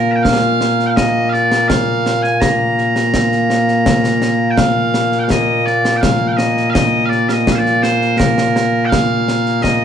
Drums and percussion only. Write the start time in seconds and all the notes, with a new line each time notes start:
0.25 concert bass drum, snare
0.61 snare
0.79 snare
0.97 concert bass drum, snare
1.34 snare
1.52 snare
1.70 concert bass drum, snare
2.06 snare
2.24 snare
2.42 concert bass drum, snare
2.78 snare
2.96 snare
3.14 concert bass drum, snare
3.32 snare
3.50 snare
3.68 snare
3.86 concert bass drum, snare
4.04 snare
4.22 snare
4.57 concert bass drum, snare
4.94 snare
5.12 snare
5.30 concert bass drum, snare
5.67 snare
5.85 snare
6.03 concert bass drum, snare
6.39 snare
6.57 snare
6.75 concert bass drum, snare
7.12 snare
7.29 snare
7.47 concert bass drum, snare
7.66 snare
7.83 snare
8.02 snare
8.20 concert bass drum, snare
8.38 snare
8.56 snare
8.92 concert bass drum, snare
9.28 snare
9.46 snare
9.64 concert bass drum, snare